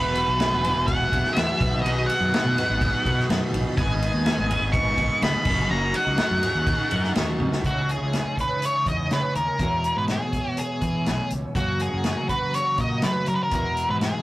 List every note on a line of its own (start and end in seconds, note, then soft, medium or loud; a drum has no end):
0.00 0.23 E1 loud
0.00 0.64 E2 medium
0.00 0.64 E3 medium
0.00 0.39 F#3 medium
0.00 0.40 B3 loud
0.00 0.40 E4 loud
0.00 0.42 G#4 medium
0.00 0.92 B4 medium
0.00 1.58 F#5 medium
0.00 1.59 G#5 medium
0.00 5.42 B5 medium
0.00 1.59 E6 medium
0.15 ride medium
0.28 0.49 B1 medium
0.39 0.66 F#3 medium
0.39 0.65 B3 medium
0.39 0.63 E4 medium
0.39 0.62 G#4 medium
0.39 snare loud
0.39 ride medium
0.51 0.73 E1 medium
0.51 high conga medium
0.63 1.13 F#3 medium
0.63 1.13 B3 medium
0.63 1.11 E4 medium
0.63 1.10 G#4 medium
0.63 ride medium
0.63 high conga medium
0.63 low conga medium
0.76 1.07 E1 medium
0.87 1.32 F#5 loud
0.87 kick loud
0.87 ride loud
1.11 1.23 E1 medium
1.11 1.35 F#3 medium
1.11 1.37 B3 medium
1.11 1.37 E4 medium
1.11 1.38 G#4 medium
1.11 kick medium
1.11 ride medium
1.11 high conga medium
1.25 snare soft
1.33 1.59 E2 medium
1.33 1.59 E3 loud
1.33 1.59 F#3 loud
1.33 1.79 E5 loud
1.33 snare loud
1.33 ride loud
1.37 1.47 E2 medium
1.37 1.60 B3 loud
1.37 1.60 E4 loud
1.37 1.59 G#4 loud
1.59 1.81 B1 medium
1.59 1.83 B2 medium
1.59 1.84 D#3 medium
1.59 1.84 F#3 medium
1.59 1.86 B3 medium
1.59 1.86 D#4 medium
1.59 1.87 B4 medium
1.59 5.42 D#5 medium
1.59 3.75 F#5 medium
1.59 5.42 D#6 medium
1.59 kick loud
1.59 ride medium
1.59 low conga medium
1.73 high conga medium
1.82 2.05 B1 medium
1.82 2.57 B2 loud
1.82 2.57 D#3 loud
1.82 2.32 F#3 medium
1.82 2.06 D#5 loud
1.82 ride loud
1.86 2.34 B3 loud
1.86 2.35 D#4 loud
1.86 2.36 B4 loud
2.06 3.24 F#5 medium
2.06 ride medium
2.20 2.31 F#2 medium
2.33 2.60 F#3 medium
2.33 2.58 B3 medium
2.33 2.58 D#4 medium
2.33 2.56 B4 medium
2.33 snare loud
2.33 ride loud
2.44 2.55 B2 medium
2.44 high conga medium
2.57 3.07 B3 medium
2.57 3.07 D#4 medium
2.57 3.05 B4 medium
2.57 snare soft
2.57 ride medium
2.57 high conga medium
2.57 low conga medium
2.61 3.08 F#3 medium
2.69 2.90 G#1 medium
2.81 kick loud
2.81 ride loud
3.05 3.26 B2 medium
3.05 3.31 B3 medium
3.05 3.32 D#4 medium
3.05 3.32 B4 medium
3.05 kick medium
3.05 ride medium
3.05 high conga medium
3.10 3.30 F#3 medium
3.19 snare soft
3.29 3.39 F#2 medium
3.29 3.76 B2 loud
3.29 3.76 D#3 loud
3.29 3.77 F#3 loud
3.29 3.77 B3 loud
3.29 3.80 D#4 loud
3.29 snare loud
3.29 ride medium
3.33 3.78 B4 loud
3.53 3.64 A#1 loud
3.53 ride medium
3.53 low conga medium
3.67 high conga medium
3.77 4.08 G#1 loud
3.77 4.50 G#2 medium
3.77 4.50 D#3 medium
3.77 4.24 G#3 loud
3.77 4.26 B3 loud
3.77 4.28 D#4 loud
3.77 4.28 B4 loud
3.77 5.44 G#5 medium
3.77 4.70 G#5 medium
3.77 kick loud
3.77 ride loud
4.02 ride medium
4.14 4.34 D#2 loud
4.26 4.51 G#3 medium
4.26 4.50 B3 medium
4.26 4.50 D#4 medium
4.26 4.48 B4 medium
4.26 snare loud
4.26 ride loud
4.38 4.58 G#1 medium
4.38 high conga medium
4.49 5.00 G#3 medium
4.49 4.99 B3 medium
4.49 4.99 D#4 medium
4.49 4.97 B4 medium
4.49 ride medium
4.49 high conga medium
4.49 low conga medium
4.61 4.92 G#1 medium
4.73 5.23 C#6 loud
4.73 kick loud
4.73 ride loud
4.97 5.08 G#1 medium
4.97 5.23 G#3 medium
4.97 5.23 B3 medium
4.97 5.24 D#4 medium
4.97 5.24 B4 medium
4.97 kick medium
4.97 ride medium
4.97 high conga medium
5.22 5.32 C#2 medium
5.22 5.45 G#2 loud
5.22 5.45 D#3 medium
5.22 5.46 G#3 loud
5.22 5.46 B3 medium
5.22 5.47 D#4 loud
5.22 5.46 B4 loud
5.22 5.71 B5 loud
5.22 snare loud
5.22 ride loud
5.45 5.66 F#1 medium
5.45 5.71 C#4 medium
5.45 5.71 D#4 medium
5.45 5.72 A#4 medium
5.45 7.62 D#5 medium
5.45 7.62 F#5 medium
5.45 7.62 A#5 medium
5.45 7.62 C#6 medium
5.45 kick loud
5.45 crash loud
5.45 low conga medium
5.50 5.69 F#3 medium
5.58 high conga medium
5.70 5.91 F#1 loud
5.70 6.17 F#3 medium
5.70 6.18 C#4 medium
5.70 6.19 D#4 medium
5.70 6.20 A#4 loud
5.70 5.95 A#5 medium
5.94 7.12 F#5 medium
5.94 ride medium
6.07 6.17 C#2 medium
6.17 6.67 F#3 medium
6.17 6.44 C#4 medium
6.17 6.43 D#4 medium
6.17 6.41 A#4 medium
6.17 snare loud
6.17 ride loud
6.31 6.41 F#2 loud
6.31 high conga medium
6.42 6.93 C#4 medium
6.42 6.92 D#4 medium
6.42 6.90 A#4 medium
6.42 snare soft
6.42 ride medium
6.42 high conga medium
6.42 low conga medium
6.55 6.76 D#2 medium
6.67 kick loud
6.67 ride loud
6.91 7.13 F#2 medium
6.91 7.15 C#4 medium
6.91 7.16 D#4 medium
6.91 7.17 A#4 medium
6.91 ride medium
6.91 high conga medium
6.91 low conga medium
7.04 snare soft
7.15 7.38 D#2 medium
7.15 7.63 F#3 loud
7.15 7.63 C#4 medium
7.15 7.64 D#4 loud
7.15 7.64 A#4 loud
7.15 snare loud
7.15 ride loud
7.15 low conga medium
7.28 high conga medium
7.40 7.62 C#2 medium
7.40 high tom medium
7.40 low conga medium
7.52 snare medium
7.63 7.95 C#2 medium
7.63 9.58 C#3 medium
7.63 9.61 E3 medium
7.63 9.59 G#3 medium
7.63 9.59 D#4 medium
7.63 9.63 E4 medium
7.63 7.90 F#4 medium
7.63 11.53 C#5 medium
7.63 11.53 G#5 medium
7.63 9.58 C#6 medium
7.63 9.59 D#6 medium
7.63 kick medium
7.63 closed hi-hat medium
7.89 8.35 G#4 medium
7.89 closed hi-hat soft
8.01 8.22 C#2 medium
8.13 snare medium
8.13 closed hi-hat medium
8.37 8.64 B4 medium
8.37 kick medium
8.37 closed hi-hat medium
8.62 8.88 C#5 medium
8.62 closed hi-hat medium
8.86 9.07 E2 medium
8.86 9.13 D#5 medium
8.86 kick medium
8.86 closed hi-hat medium
9.11 9.22 C#3 medium
9.11 9.35 B4 medium
9.11 snare medium
9.11 closed hi-hat medium
9.35 9.46 D#2 medium
9.35 9.98 A#4 medium
9.35 closed hi-hat soft
9.59 11.55 E2 medium
9.59 9.91 E2 medium
9.59 11.55 B2 medium
9.59 11.57 E3 medium
9.59 11.56 G#3 medium
9.59 11.56 B3 medium
9.59 11.55 E6 medium
9.59 kick loud
9.59 closed hi-hat medium
9.64 11.58 E4 medium
9.84 closed hi-hat medium
9.97 10.18 G#2 medium
9.97 10.03 B4 medium
10.08 10.58 G#4 medium
10.08 snare medium
10.08 closed hi-hat medium
10.33 kick medium
10.33 closed hi-hat medium
10.57 11.28 G#4 medium
10.57 closed hi-hat medium
10.81 11.08 E3 medium
10.81 kick medium
10.81 closed hi-hat soft
11.06 11.18 B1 medium
11.06 snare medium
11.06 closed hi-hat medium
11.30 11.42 C#2 medium
11.30 closed hi-hat medium
11.55 13.51 F#2 medium
11.55 11.87 F#2 medium
11.55 13.52 C#3 medium
11.55 13.53 E3 medium
11.55 13.52 A#3 medium
11.55 13.52 C#4 medium
11.55 11.81 F#4 medium
11.55 13.51 F#5 medium
11.55 13.51 A#5 medium
11.55 13.51 C#6 medium
11.55 14.22 E6 medium
11.55 kick medium
11.55 closed hi-hat medium
11.59 13.53 F#4 medium
11.79 12.27 G#4 medium
11.79 closed hi-hat soft
11.93 12.14 F#2 medium
12.04 snare medium
12.04 closed hi-hat medium
12.29 12.55 B4 medium
12.29 kick medium
12.29 closed hi-hat medium
12.54 12.77 C#5 medium
12.54 closed hi-hat medium
12.78 13.00 A#2 medium
12.78 13.05 D#5 medium
12.78 kick medium
12.78 closed hi-hat medium
13.02 13.14 F#3 medium
13.02 13.28 B4 medium
13.02 snare loud
13.02 closed hi-hat medium
13.26 13.39 F#3 medium
13.26 13.35 A#4 medium
13.26 closed hi-hat medium
13.35 13.42 B4 medium
13.43 13.90 A#4 medium
13.51 14.22 E2 medium
13.51 13.84 E2 medium
13.51 14.22 B2 medium
13.51 14.22 E3 medium
13.51 14.22 G#3 medium
13.51 14.22 B3 medium
13.51 14.22 G#5 medium
13.51 kick medium
13.51 closed hi-hat medium
13.55 14.22 E4 medium
13.77 closed hi-hat medium
13.89 14.11 G#2 medium
13.89 13.95 B4 medium
14.01 14.22 G#4 medium
14.01 snare medium
14.01 closed hi-hat medium